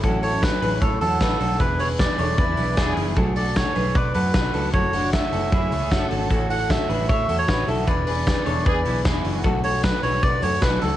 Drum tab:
HH |xoxoxoxo|xoxoxoxo|xoxoxoxo|xoxoxoxo|
SD |--o---o-|--o---o-|--o---o-|--o---o-|
BD |o-o-o-o-|o-o-o-o-|o-o-o-o-|o-o-o-o-|

HH |xoxoxoxo|xo-oxoxo|xoxoxoxo|
SD |--o---o-|--o---o-|--o---o-|
BD |o-o-o-o-|o-o-o-o-|o-o-o-o-|